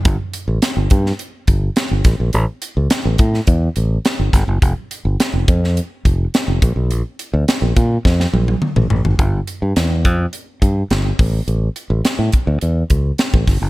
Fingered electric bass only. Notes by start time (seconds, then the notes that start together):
0.05 G1
0.48 A1
0.77 G1
0.91 G2
1.48 G1
1.91 G1
2.05 A1
2.20 A#1
2.34 A1
2.77 C#2
3.05 A1
3.19 A2
3.47 E2
3.77 A1
4.19 G1
4.33 G1
4.48 F#1
4.62 F1
5.05 G1
5.33 F1
5.48 F2
6.05 F1
6.48 F1
6.62 A#1
6.76 B1
6.91 A#1
7.33 D2
7.62 A#1
7.76 A#2
8.05 F2
8.33 A#1
8.76 A1
8.90 A1
9.05 G#1
9.19 G1
9.62 G2
9.77 E2
10.05 F2
10.62 G2
10.91 G1
11.19 A1
11.48 A1
11.90 A1
12.04 muted fingered electric bass stroke
12.19 A2
12.47 D2
12.62 E2
12.90 C#2
13.34 A1
13.47 G1
13.62 F#1